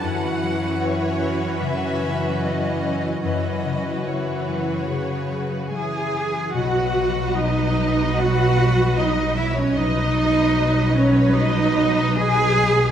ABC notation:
X:1
M:4/4
L:1/16
Q:1/4=74
K:B
V:1 name="Violin section"
f4 c4 e4 d4 | d4 c8- c2 z2 | d16 | d16 |]
V:2 name="Violin section"
[FB]16 | [FB]12 g4 | f4 d4 f4 d2 e c | d6 c2 d4 g4 |]
V:3 name="Cello section"
F,,16 | F,,12 G4 | F4 D4 F4 D2 E C | D6 C2 D4 G4 |]
V:4 name="Harp" clef=bass
F,,2 F,2 E2 F,2 C,2 F,2 E2 F,2 | F,,2 C,2 E2 F,2 C,2 F,2 E2 F,2 | B,,2 F,2 D2 F,2 B,2 F,2 D2 F,2 | B,,2 B,2 D2 F,2 B,2 F,2 D2 F,2 |]
V:5 name="Viola section" clef=bass
[E,C]16 | [E,C]4 E,4 C,4 E,4 | [F,B]16 | [F,B]16 |]
V:6 name="Double bass section" clef=bass
z16 | z16 | B,,,16 | B,,,16 |]